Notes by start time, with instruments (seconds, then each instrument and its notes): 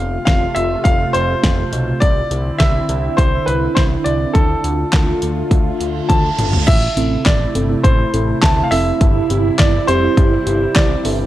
Already playing: analog synth bass F1, analog synth pad C3 A3 F4, grand piano F5
0.25 analog synth bass F1, grand piano F5, kick, snare, closed hi-hat
0.55 analog synth bass F1, grand piano E5, closed hi-hat
0.84 analog synth bass F1, grand piano F5, kick, closed hi-hat
1.13 analog synth bass F1, grand piano C5, closed hi-hat
1.44 analog synth bass F1, kick, snare, closed hi-hat
1.73 analog synth bass B1, closed hi-hat
2.00 analog synth bass C2, analog synth pad D3 C4 E4, grand piano D5, kick, closed hi-hat
2.31 analog synth bass C2, closed hi-hat
2.58 analog synth bass C2, grand piano E5, kick, snare, closed hi-hat
2.89 analog synth bass C2, closed hi-hat
3.17 analog synth bass C2, grand piano C5, kick, closed hi-hat
3.46 analog synth bass C2, grand piano B4, closed hi-hat
3.75 analog synth bass C2, grand piano C5, kick, snare, closed hi-hat
4.04 analog synth bass C2, grand piano D5, closed hi-hat
4.33 analog synth bass D2, analog synth pad A3 F4, grand piano A4, kick, closed hi-hat
4.64 analog synth bass D2, closed hi-hat
4.93 analog synth bass D2, kick, snare, clap, closed hi-hat
5.22 analog synth bass D2, closed hi-hat
5.51 analog synth bass D2, kick, closed hi-hat, reverse cymbal
5.81 analog synth bass D2, closed hi-hat
6.09 analog synth bass D2, grand piano A5, kick, closed hi-hat, high tom
6.39 analog synth bass G1, closed hi-hat, mid tom
6.53 floor tom
6.67 analog synth bass A1, analog synth pad C3 A3 E4, grand piano E5, kick, closed hi-hat, crash
6.97 analog synth bass A1, synth keys C4 E4 A4, closed hi-hat
7.25 analog synth bass A1, grand piano D5, kick, snare, clap, closed hi-hat
7.55 analog synth bass G1, synth keys C4 E4 A4, closed hi-hat
7.70 synth keys C4 E4 A4
7.83 analog synth bass A1, grand piano C5, kick, closed hi-hat
8.13 analog synth bass A1, synth keys C4 E4 A4, closed hi-hat
8.42 analog synth bass D2, grand piano A5, kick, snare, clap, closed hi-hat
8.64 grand piano F5
8.71 analog synth bass F1, synth keys C4 E4 A4, grand piano E5, open hi-hat
9.01 analog synth bass G1, analog synth pad G3, kick, closed hi-hat
9.30 analog synth bass G1, synth keys C4 E4 G4, closed hi-hat
9.58 analog synth bass G1, grand piano D5, kick, snare, clap, closed hi-hat
9.87 analog synth bass F1, synth keys C4 E4 G4, grand piano C5, closed hi-hat
10.03 synth keys C4 E4 G4
10.17 analog synth bass G1, kick, closed hi-hat
10.47 analog synth bass G1, synth keys C4 E4 G4, closed hi-hat
10.75 analog synth bass C2, grand piano D5, kick, snare, clap, closed hi-hat
11.05 analog synth bass G1, synth keys C4 E4 A4, open hi-hat